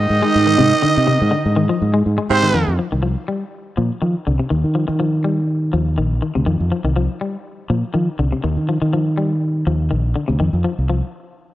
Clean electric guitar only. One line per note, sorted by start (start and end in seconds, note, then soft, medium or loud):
0.22 0.37 G#3 medium
0.47 0.54 D#3 medium
0.58 0.73 C3 loud
0.82 0.97 D3 medium
1.07 1.22 C3 medium
1.31 1.46 D3 medium
1.56 1.64 D#3 medium
1.69 1.84 F3 medium
1.94 2.08 G#3 medium
2.18 2.32 G#3 medium
2.43 2.50 D#3 medium
2.54 2.69 D#3 medium
2.79 2.87 F3 medium
2.92 2.99 D#3 medium
3.03 3.17 F3 medium
3.28 3.43 G3 medium
3.77 3.92 F3 medium
4.02 4.16 D#3 medium
4.27 4.34 D3 medium
4.39 4.46 C3 medium
4.50 4.65 D#3 medium
4.75 4.83 F3 medium
4.88 4.95 D#3 medium
5.00 5.14 F3 medium
5.24 5.39 G3 medium
5.73 5.88 F3 medium
5.98 6.12 D#3 medium
6.22 6.30 D#3 medium
6.35 6.42 C3 medium
6.46 6.61 D#3 medium
6.72 6.80 F3 medium
6.85 6.92 D#3 medium
6.96 7.11 F3 medium
7.21 7.36 G3 medium
7.70 7.85 F3 medium
7.94 8.09 D#3 medium
8.19 8.27 D3 medium
8.32 8.39 C3 medium
8.44 8.58 D#3 medium
8.69 8.76 F3 medium
8.82 8.88 D#3 medium
8.93 9.08 F3 medium
9.18 9.32 G3 medium
9.67 9.81 F3 medium
9.91 10.05 D#3 medium
10.16 10.23 D3 medium
10.28 10.35 C3 medium
10.40 10.55 D#3 medium
10.64 10.72 F3 medium
10.90 11.04 F3 medium